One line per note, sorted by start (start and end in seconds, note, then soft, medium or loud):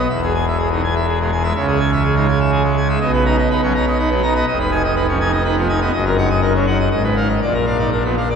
0.10 1.52 E1 medium
0.10 1.52 E2 medium
0.10 0.21 E5 medium
0.22 0.33 G#4 medium
0.34 0.45 G#5 loud
0.47 0.58 E5 medium
0.58 0.69 G#4 medium
0.71 0.82 B2 medium
0.71 0.81 D#4 medium
0.84 0.94 G#5 medium
0.95 1.06 E5 medium
1.08 1.19 G#4 medium
1.20 1.31 B2 medium
1.20 1.31 G#3 medium
1.32 1.43 G#5 medium
1.43 1.54 G#3 medium
1.43 1.53 E5 medium
1.55 2.97 C#2 medium
1.55 2.97 C#3 medium
1.55 1.66 E5 medium
1.67 1.78 G#4 medium
1.79 1.91 G#5 loud
1.92 2.03 E5 medium
2.04 2.15 G#4 medium
2.15 2.27 G#3 medium
2.15 2.26 D#4 medium
2.28 2.39 G#5 medium
2.40 2.51 E5 medium
2.51 2.63 G#4 medium
2.64 2.75 G#3 medium
2.76 2.87 G#5 medium
2.89 2.99 G#3 medium
2.89 2.99 E5 medium
3.01 4.43 B1 loud
3.01 4.43 B2 loud
3.01 3.12 D#5 medium
3.13 3.24 B4 medium
3.25 3.36 D#4 medium
3.25 3.36 A#5 loud
3.38 3.49 D#5 medium
3.50 3.61 D#4 medium
3.50 3.61 B4 medium
3.62 3.73 F#3 medium
3.62 3.72 C#4 medium
3.74 3.85 D#4 medium
3.74 3.85 A#5 loud
3.87 3.97 D#5 medium
3.99 4.10 D#4 medium
3.99 4.10 B4 medium
4.10 4.21 F#3 medium
4.10 4.21 B3 medium
4.22 4.34 D#4 medium
4.22 4.33 A#5 loud
4.35 4.45 B3 medium
4.35 4.45 D#5 medium
4.47 5.90 F1 loud
4.47 5.90 F2 loud
4.47 4.58 D#5 loud
4.60 4.70 B4 medium
4.71 4.82 D#4 medium
4.71 4.82 G#5 loud
4.84 4.95 D#5 medium
4.95 5.06 D#4 medium
4.95 5.07 B4 loud
5.08 5.19 F3 medium
5.08 5.18 C#4 medium
5.20 5.31 D#4 medium
5.20 5.31 G#5 medium
5.32 5.43 D#5 medium
5.44 5.55 D#4 medium
5.44 5.55 B4 medium
5.56 5.67 F3 medium
5.56 5.68 B3 medium
5.68 5.80 D#4 medium
5.68 5.79 G#5 medium
5.81 5.92 B3 medium
5.81 5.91 D#5 medium
5.93 6.89 F#1 loud
5.93 6.89 F#2 loud
5.93 6.04 D#5 loud
6.05 6.16 A#4 medium
6.18 6.29 D#4 medium
6.18 6.29 F#5 loud
6.29 6.41 D#5 medium
6.41 6.53 D#4 medium
6.41 6.53 A#4 medium
6.55 6.66 F#3 medium
6.55 6.65 C#4 medium
6.66 6.78 D#4 medium
6.66 6.78 F#5 medium
6.79 6.89 D#5 medium
6.91 7.40 G#1 medium
6.91 7.40 G#2 medium
6.91 7.02 D#5 medium
7.04 7.15 B4 medium
7.16 7.28 D#4 medium
7.16 7.28 F5 medium
7.29 7.40 D#5 medium
7.41 8.36 A#1 medium
7.41 8.36 A#2 medium
7.41 7.53 D5 medium
7.54 7.65 A#4 medium
7.66 7.78 D4 medium
7.66 7.78 F5 medium
7.79 7.90 D#4 medium
7.79 7.90 D5 medium
7.92 8.03 D4 medium
7.92 8.03 A#4 medium
8.04 8.16 F3 medium
8.04 8.15 B3 soft
8.17 8.28 D4 medium
8.17 8.28 F5 medium
8.30 8.36 D5 medium